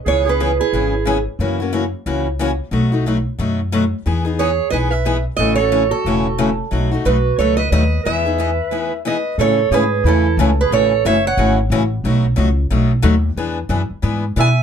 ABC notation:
X:1
M:4/4
L:1/8
Q:"Swing" 1/4=180
K:E
V:1 name="Steel-string acoustic guitar"
c B2 G4 z | z8 | z8 | z2 c2 d e2 z |
d c2 A4 z | z2 B2 c d d2 | e6 d2 | [K:A] c2 B2 A2 z B |
c2 e f2 z3 | z8 | z6 g2 |]
V:2 name="Clarinet"
G G2 E4 z | z8 | z8 | z2 G2 B B2 z |
A A2 F4 z | z2 F2 A B B2 | B6 B2 | [K:A] A2 G2 E2 z G |
A2 c c2 z3 | z8 | z6 e2 |]
V:3 name="Steel-string acoustic guitar"
[C,E,B,CG] [B,CG] [C,E,B,CG] z [C,E,B,CG] z [C,E,B,CG] z | [C,E,^A,CF] [A,CF] [C,E,A,CF] z [C,E,A,CF] z [C,E,A,CF] z | [B,,F,A,DF] [A,DF] [B,,F,A,DF] z [B,,F,A,DF] z [B,,F,A,DF] z | [E,B,DG] [B,DG] [E,B,DG] z [E,B,DG] z [E,B,DG] z |
[C,E,A,CF] [A,CF] [C,E,A,CF] z [C,E,A,CF] z [C,E,A,CF] z | [B,,F,A,DF] [A,DF] [B,,F,A,DF] z [B,,F,A,DF] z [B,,F,A,DF] z | [E,B,DG] [B,DG] [E,B,DG] z [E,B,DG] z [E,B,DG] z | [K:A] [C,E,A,CG] z [C,E,A,CG] z [C,E,A,CG] z [C,E,A,CG] z |
[C,E,A,CF] z [C,E,A,CF] z [C,E,A,CF] z [C,E,A,CF] z | [B,,F,A,^DF] z [B,,F,A,DF] z [B,,F,A,DF] z [B,,F,A,DF] z | [E,B,DG] z [E,B,DG] z [E,B,DG] z [E,B,DG] z |]
V:4 name="Upright bass" clef=bass
C,,4 G,,,4 | F,,4 C,,4 | B,,,4 F,,4 | E,,4 B,,,4 |
A,,,4 E,,,4 | B,,,2 B,,,2 C,,2 D,,2 | E,,4 z4 | [K:A] A,,2 G,,2 E,,2 C,,2 |
A,,,2 F,,,2 G,,,2 A,,,2 | B,,,2 C,,2 B,,,2 ^D,,2 | E,,2 F,, z G,,2 B,,2 |]